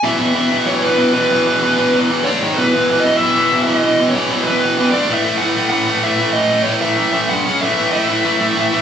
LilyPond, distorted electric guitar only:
\new Staff \with { instrumentName = "Distorted electric guitar" } { \clef bass \time 4/4 \key a \lydian \tempo 4 = 190 <e, b, e>8 <e, b, e>8 <e, b, e>8 <e, b, e>8 <e, b, e>8 <e, b, e>8 <e, b, e>8 <e, b, e>8 | <e, b, e>8 <e, b, e>8 <e, b, e>8 <e, b, e>8 <e, b, e>8 <e, b, e>8 <d a d'>8 <gis, dis gis>8 | <e, b, e>8 <e, b, e>8 <e, b, e>8 <e, b, e>8 <e, b, e>8 <e, b, e>8 <e, b, e>8 <e, b, e>8 | <e, b, e>8 <e, b, e>8 <e, b, e>8 <e, b, e>8 <e, b, e>8 <e, b, e>8 <e, b, e>8 <d a d'>8 |
<a, e a>8 <a, e a>8 <a, e a>8 <a, e a>8 <a, e a>8 <a, e a>8 <a, e a>8 <a, e a>8 | <a, e a>8 <a, e a>8 <a, e a>8 <a, e a>8 <a, e a>8 <a, e a>8 <g, d g>8 <cis gis cis'>8 | <a, e a>8 <a, e a>8 <a, e a>8 <a, e a>8 <a, e a>8 <a, e a>8 <a, e a>8 <a, e a>8 | }